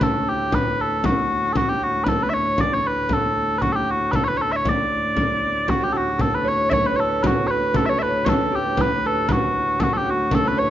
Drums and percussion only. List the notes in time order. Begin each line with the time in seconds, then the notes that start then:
0.01 frame drum
0.52 frame drum
1.04 frame drum
1.55 frame drum
2.06 frame drum
2.58 frame drum
3.09 frame drum
3.62 frame drum
4.13 frame drum
4.65 frame drum
5.17 frame drum
5.42 frame drum
5.68 frame drum
6.19 frame drum
6.71 frame drum
7.24 frame drum
7.74 frame drum
8.26 frame drum
8.77 frame drum
9.03 frame drum
9.29 frame drum
9.80 frame drum
10.31 frame drum